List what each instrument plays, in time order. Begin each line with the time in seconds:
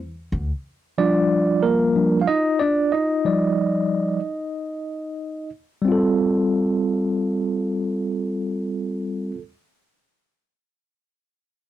0.32 upright bass D2
0.98 tine electric piano F3 G3 D4 F4 D5
1.63 tine electric piano A#3 A#4
1.95 tine electric piano F3 G3 D4
2.21 tine electric piano F5
2.27 tine electric piano D#4 D#5
2.59 tine electric piano D4 D5
2.92 tine electric piano D#4 D#5
3.25 tine electric piano F3 G3 D5
5.82 tine electric piano G3 C4
5.88 tine electric piano F4 A4